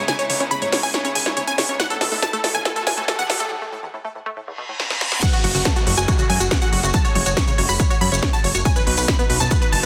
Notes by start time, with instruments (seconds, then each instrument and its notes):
Already playing: string section C#3 G#3 B3 D#4 E4, riser
0.08 synth arpeggio sound C#3, synth pluck G#5, supersaw synth G#5, snare, closed hi-hat
0.19 synth arpeggio sound C#4, supersaw synth C#5, synth pluck C#5, closed hi-hat
0.30 analog synth bass C#2, synth arpeggio sound C#3, supersaw synth C#5, synth pluck C#5, open hi-hat
0.40 analog synth bass C#2, synth arpeggio sound C#4, synth pluck C#5, supersaw synth C#5, closed hi-hat
0.51 synth arpeggio sound C#3, synth pluck B5, supersaw synth B5, closed hi-hat
0.62 synth arpeggio sound G#2, synth pluck C#5, supersaw synth C#5, closed hi-hat
0.72 analog synth bass C#2, synth arpeggio sound C#3, synth pluck C#5, supersaw synth C#5, snare, open hi-hat
0.83 analog synth bass C#2, synth arpeggio sound C#4, synth pluck G#5, supersaw synth G#5, open hi-hat
0.94 synth arpeggio sound C#3, synth pluck C#5, supersaw synth C#5, snare, closed hi-hat
1.05 synth arpeggio sound C#4, supersaw synth C#5, synth pluck C#5, closed hi-hat
1.15 analog synth bass G#1, synth arpeggio sound C#3, synth pluck G#5, supersaw synth G#5, open hi-hat
1.26 analog synth bass C#2, synth arpeggio sound G#2, synth pluck C#5, supersaw synth C#5, snare, closed hi-hat
1.37 synth arpeggio sound C#3, supersaw synth C#5, synth pluck C#5, closed hi-hat
1.47 synth arpeggio sound C#4, supersaw synth G#5, synth pluck G#5, closed hi-hat
1.58 analog synth bass C#2, synth arpeggio sound C#3, synth pluck C#5, supersaw synth C#5, snare, open hi-hat
1.69 analog synth bass C#2, synth arpeggio sound C#4, supersaw synth C#5, synth pluck C#5, closed hi-hat
1.80 synth arpeggio sound A2, string section A3, synth pluck F#5, supersaw synth F#5, snare, closed hi-hat
1.90 synth arpeggio sound E2, synth pluck A4, supersaw synth A4, closed hi-hat
2.01 analog synth bass A1, synth arpeggio sound A2, synth pluck A4, supersaw synth A4, snare, open hi-hat
2.12 analog synth bass A1, synth arpeggio sound A3, synth pluck A4, supersaw synth A4, open hi-hat
2.22 synth arpeggio sound A2, synth pluck A5, supersaw synth A5, snare, closed hi-hat
2.33 synth arpeggio sound A3, synth pluck A4, supersaw synth A4, closed hi-hat
2.44 analog synth bass A1, synth arpeggio sound A2, synth pluck A4, supersaw synth A4, snare, open hi-hat
2.55 analog synth bass A1, synth arpeggio sound E2, supersaw synth G#5, synth pluck G#5, closed hi-hat
2.65 synth arpeggio sound A2, synth pluck A4, supersaw synth A4, snare, closed hi-hat
2.76 synth arpeggio sound A3, synth pluck A4, supersaw synth A4, closed hi-hat
2.87 synth arpeggio sound A2, analog synth bass A2, synth pluck G#5, supersaw synth G#5, snare, open hi-hat
2.97 analog synth bass A1, synth arpeggio sound A3, synth pluck A4, supersaw synth A4, closed hi-hat
3.08 synth arpeggio sound A2, synth pluck A4, supersaw synth A4, snare, closed hi-hat
3.19 synth arpeggio sound E2, synth pluck F#5, supersaw synth F#5, closed hi-hat
3.29 analog synth bass A1, synth arpeggio sound A2, synth pluck A4, supersaw synth A4, snare, open hi-hat
3.40 analog synth bass A1, synth arpeggio sound A3, synth pluck A4, supersaw synth A4, closed hi-hat
3.51 synth arpeggio sound A2
3.62 synth arpeggio sound A3
3.72 synth arpeggio sound A2
3.83 synth arpeggio sound E2
3.94 synth arpeggio sound A2
4.05 synth arpeggio sound A3
4.15 synth arpeggio sound A2
4.26 synth arpeggio sound A3
4.37 synth arpeggio sound A2, reverse cymbal
4.47 synth arpeggio sound E2
4.58 synth arpeggio sound B2
4.69 synth arpeggio sound A2
4.80 synth arpeggio sound G#2, snare
4.90 synth arpeggio sound B2, snare
5.01 synth arpeggio sound A2, snare
5.12 synth arpeggio sound A2, snare
5.22 synth arpeggio sound F#3, string section G#3 A3 F#4, supersaw synth F#5, synth pluck F#5, kick, closed hi-hat, crash, downlifter, maracas
5.33 synth pluck F#4, synth arpeggio sound F#4, supersaw synth F#4, closed hi-hat, maracas
5.44 analog synth bass F#1, synth arpeggio sound F#3, synth pluck F#4, supersaw synth F#4, open hi-hat
5.55 analog synth bass F#1, synth arpeggio sound C#3, synth pluck F#4, supersaw synth F#4, open hi-hat, maracas
5.65 synth arpeggio sound F#3, supersaw synth A5, synth pluck A5, kick, snare, maracas
5.76 synth arpeggio sound F#4, supersaw synth F#4, synth pluck F#4, closed hi-hat, maracas
5.87 analog synth bass F#1, synth arpeggio sound F#3, synth pluck F#4, supersaw synth F#4, open hi-hat
5.97 analog synth bass F#1, synth arpeggio sound F#4, supersaw synth G#5, synth pluck G#5, closed hi-hat, maracas
6.08 synth arpeggio sound F#3, supersaw synth F#4, synth pluck F#4, kick, closed hi-hat, maracas
6.18 synth arpeggio sound C#3, supersaw synth F#4, synth pluck F#4, closed hi-hat, maracas
6.29 analog synth bass F#2, synth arpeggio sound F#3, supersaw synth G#5, synth pluck G#5, open hi-hat
6.40 analog synth bass F#1, supersaw synth F#4, synth pluck F#4, synth arpeggio sound F#4, closed hi-hat, maracas
6.51 synth arpeggio sound F#3, synth pluck F#4, supersaw synth F#4, kick, snare, closed hi-hat, maracas
6.61 synth arpeggio sound F#4, supersaw synth F#5, synth pluck F#5, closed hi-hat, maracas
6.72 analog synth bass F#1, synth arpeggio sound F#3, synth pluck F#4, supersaw synth F#4, open hi-hat
6.83 analog synth bass F#1, synth arpeggio sound C#3, supersaw synth F#4, synth pluck F#4, closed hi-hat, maracas
6.93 synth arpeggio sound F#3, supersaw synth A5, synth pluck A5, kick, closed hi-hat, maracas
7.05 synth arpeggio sound F#4, supersaw synth C#5, synth pluck C#5, closed hi-hat, maracas
7.15 analog synth bass F#1, synth arpeggio sound F#3, supersaw synth C#5, synth pluck C#5, open hi-hat
7.26 analog synth bass F#1, synth arpeggio sound F#4, supersaw synth C#5, synth pluck C#5, closed hi-hat, maracas
7.37 synth arpeggio sound F#3, supersaw synth C#6, synth pluck C#6, kick, snare, closed hi-hat, maracas
7.47 synth arpeggio sound C#3, supersaw synth C#5, synth pluck C#5, closed hi-hat, maracas
7.58 analog synth bass F#1, synth arpeggio sound F#3, supersaw synth C#5, synth pluck C#5, open hi-hat
7.69 analog synth bass F#1, synth arpeggio sound F#4, supersaw synth B5, synth pluck B5, open hi-hat, maracas
7.80 synth arpeggio sound F#3, supersaw synth C#5, synth pluck C#5, kick, closed hi-hat, maracas
7.90 synth arpeggio sound F#4, supersaw synth C#5, synth pluck C#5, closed hi-hat, maracas
8.01 analog synth bass F#2, synth arpeggio sound F#3, synth pluck B5, supersaw synth B5, open hi-hat
8.12 analog synth bass F#1, synth arpeggio sound C#3, synth pluck C#5, supersaw synth C#5, closed hi-hat, maracas
8.22 synth arpeggio sound F#3, synth pluck C#5, kick, snare, closed hi-hat, maracas
8.33 synth arpeggio sound F#4, synth pluck A5, supersaw synth A5, closed hi-hat, maracas
8.44 analog synth bass F#1, synth arpeggio sound F#3, synth pluck C#5, supersaw synth C#5, open hi-hat
8.55 analog synth bass F#1, synth arpeggio sound F#4, synth pluck C#5, supersaw synth C#5, closed hi-hat, maracas
8.65 synth arpeggio sound B2, string section F#3 B3 D#4, synth pluck G#5, supersaw synth G#5, kick, closed hi-hat, maracas
8.76 synth arpeggio sound F#2, synth pluck B4, supersaw synth B4, closed hi-hat, maracas
8.87 analog synth bass B1, synth arpeggio sound B2, synth pluck B4, supersaw synth B4, open hi-hat
8.97 analog synth bass B1, synth arpeggio sound B3, synth pluck B4, supersaw synth B4, open hi-hat, maracas
9.08 synth arpeggio sound B2, synth pluck B5, supersaw synth B5, kick, snare, maracas
9.19 synth arpeggio sound B3, synth pluck B4, supersaw synth B4, closed hi-hat, maracas
9.30 analog synth bass B1, synth arpeggio sound B2, synth pluck B4, supersaw synth B4, open hi-hat
9.40 analog synth bass B1, synth arpeggio sound F#2, synth pluck A5, supersaw synth A5, closed hi-hat, maracas
9.51 synth arpeggio sound B2, synth pluck B4, supersaw synth B4, kick, closed hi-hat, maracas
9.62 synth arpeggio sound B3, synth pluck B4, supersaw synth B4, closed hi-hat, maracas
9.72 analog synth bass F#1, synth arpeggio sound B2, synth pluck A5, supersaw synth A5, open hi-hat